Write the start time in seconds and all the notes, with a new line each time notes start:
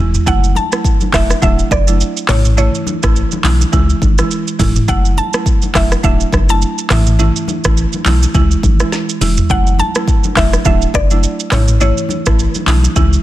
Already playing: E3 G#3
0.00 E1 C#4 E4
0.14 floor tom, shaker
0.26 F#1 F#3 A3 C#4 E4 F#5, kick, low conga, shaker
0.44 shaker
0.55 A5, high conga, shaker
0.72 F#3 A3 C#4 E4, cross-stick, shaker
0.84 kick, shaker
1.01 high conga, shaker
1.13 E1 F#3 A3 C#4 E4 E5, kick, cross-stick, clap, open hi-hat, high conga, shaker
1.30 cross-stick, high conga, shaker
1.42 D1 F#3 A3 D4 E4 E5, kick, low conga, shaker
1.59 shaker
1.71 F#1 D5, kick, cross-stick, high conga, shaker
1.87 F#3 A3 D4 E4, high conga, shaker
2.01 shaker
2.17 shaker
2.28 A1 E3 A3 C#4 E4 C#5, cross-stick, clap, mid tom, open hi-hat, high conga, low conga, shaker
2.45 mid tom, shaker
2.57 E3 A3 C#4 E4 C#5, low conga, shaker
2.75 shaker
2.87 high conga, shaker
3.03 A1 E3 A3 C#4 E4, kick, cross-stick, shaker
3.16 shaker
3.31 high conga, shaker
3.44 B1 E3 A3 C#4 E4, clap, open hi-hat, high conga, shaker
3.61 high conga, shaker
3.72 C#2 E3 G#3 C#4 E4, kick, low conga, shaker
3.90 shaker
4.02 G#1, kick, high conga, shaker
4.18 E3 G#3 C#4 E4, cross-stick, high conga, shaker
4.31 shaker
4.48 shaker
4.59 E1 E3 G#3 C#4 E4, kick, mid tom, open hi-hat, high conga, low conga, shaker
4.76 mid tom, shaker
4.88 F#1 F#3 A3 C#4 E4 F#5, kick, low conga, shaker
5.05 shaker
5.17 A5, high conga, shaker
5.33 F#3 A3 C#4 E4, cross-stick, shaker
5.46 kick, shaker
5.62 high conga, shaker
5.75 E1 F#3 A3 C#4 E4 E5, kick, cross-stick, clap, open hi-hat, high conga, shaker
5.91 cross-stick, high conga, shaker
6.03 D1 F#3 A3 D4 E4 E5, kick, low conga, shaker
6.20 shaker
6.32 F#1, kick, cross-stick, high conga, shaker
6.49 F#3 A3 D4 E4 A5, high conga, shaker
6.62 shaker
6.78 shaker
6.90 A1 E3 A3 C#4 E4 E5, cross-stick, clap, mid tom, open hi-hat, high conga, low conga, shaker
7.07 mid tom, shaker
7.19 E3 A3 C#4 E4, low conga, shaker
7.36 shaker
7.48 high conga, shaker
7.64 A1 E3 A3 C#4 E4, kick, cross-stick, shaker
7.77 shaker
7.93 high conga, shaker
8.05 B1 E3 A3 C#4 E4, clap, open hi-hat, high conga, shaker
8.22 high conga, shaker
8.34 C#2 E3 G#3 C#4 E4, kick, low conga, shaker
8.51 shaker
8.63 G#1, kick, high conga, shaker
8.80 E3 G#3 C#4 E4, cross-stick, high conga, shaker
8.92 snare, shaker
9.09 shaker
9.21 E1 E3 G#3 C#4 E4, open hi-hat, high conga, low conga, shaker
9.37 floor tom, shaker
9.50 F#1 F#3 A3 C#4 E4 F#5, kick, low conga, shaker
9.67 shaker
9.79 A5, high conga, shaker
9.95 F#3 A3 C#4 E4, cross-stick, shaker
10.08 kick, shaker
10.24 high conga, shaker
10.36 E1 F#3 A3 C#4 E4 E5, kick, cross-stick, clap, open hi-hat, high conga, shaker
10.53 cross-stick, high conga, shaker
10.65 D1 F#3 A3 D4 E4 E5, kick, low conga, shaker
10.82 shaker
10.94 F#1 D5, kick, cross-stick, high conga, shaker
11.10 F#3 A3 D4 E4, high conga, shaker
11.23 shaker
11.40 shaker
11.52 A1 E3 A3 C#4 E4 C#5, cross-stick, clap, mid tom, open hi-hat, high conga, low conga, shaker
11.68 mid tom, shaker
11.81 E3 A3 C#4 E4 C#5, low conga, shaker
11.98 shaker
12.09 high conga, shaker
12.26 A1 E3 A3 C#4 E4, kick, cross-stick, shaker
12.39 shaker
12.55 high conga, shaker
12.66 B1 E3 A3 C#4 E4, clap, open hi-hat, high conga, shaker
12.83 high conga, shaker
12.96 C#2 E3 G#3 C#4 E4, kick, low conga, shaker
13.13 shaker